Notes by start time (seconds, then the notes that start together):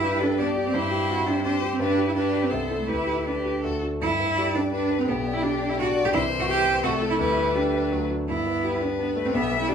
Already playing: G2 E4 G4
0.03 D4 G4 B4
0.21 D4 G4 A4
0.38 B3 D4 G4 D5
0.56 G4
0.66 C4
0.74 G2 E4 C5
0.91 G4
1.09 C4 F#4
1.27 D4 E4 G4
1.44 C4 D4 G4 C5
1.62 G4
1.72 C4
1.79 G2 D4 G4 B4
1.98 G4
2.07 E4
2.15 D4 G4 B4
2.34 G4
2.43 C4
2.50 C2 B3 A4 C5
2.70 E4 A4
2.79 A3
2.87 D2 E4 G4 B4
3.07 G4
3.25 D4 G4 B4
3.45 G4
3.63 D2 F#4 A4
3.83 D4 F#4
4.01 G2 E4
4.20 B4
4.37 G4 D5
4.55 D4 B4
4.72 D4 B4
4.90 B4
4.99 C4
5.08 B1 B3 G4
5.26 D5
5.34 E4
5.42 D4 G4
5.61 D5
5.69 E4
5.78 D4 F#4 D5
5.96 D5
6.05 G4
6.13 C2 E3 E4 C5
6.31 C5
6.39 F#4
6.47 G4
6.66 C5
6.83 C2 A3 F#4 A4
7.01 E4 A4
7.10 E4
7.19 D2 G3 E4 B4
7.38 B4
7.55 D4 G4
7.74 B4
7.91 D2 F#3
8.10 D4 F#4
8.28 G2 B3 E4
8.46 B4
8.64 G4 B4
8.81 D4 B4
8.99 B3 D4
9.16 A3 B4
9.25 C4
9.33 B1 G3 B3 E5
9.52 B4
9.60 E4
9.69 G3 D4 G4 D5